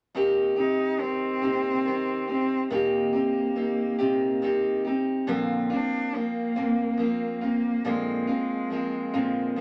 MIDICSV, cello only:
0, 0, Header, 1, 2, 480
1, 0, Start_track
1, 0, Tempo, 857143
1, 83, Time_signature, 6, 3, 24, 8
1, 5380, End_track
2, 0, Start_track
2, 0, Title_t, "Cello"
2, 0, Program_c, 0, 42
2, 328, Note_on_c, 0, 63, 66
2, 564, Note_on_c, 0, 60, 75
2, 573, Note_off_c, 0, 63, 0
2, 1283, Note_off_c, 0, 60, 0
2, 1292, Note_on_c, 0, 60, 66
2, 1510, Note_off_c, 0, 60, 0
2, 1529, Note_on_c, 0, 58, 61
2, 2702, Note_off_c, 0, 58, 0
2, 3199, Note_on_c, 0, 62, 74
2, 3449, Note_on_c, 0, 58, 72
2, 3458, Note_off_c, 0, 62, 0
2, 4165, Note_off_c, 0, 58, 0
2, 4175, Note_on_c, 0, 58, 68
2, 4419, Note_on_c, 0, 56, 64
2, 4428, Note_off_c, 0, 58, 0
2, 5380, Note_off_c, 0, 56, 0
2, 5380, End_track
0, 0, End_of_file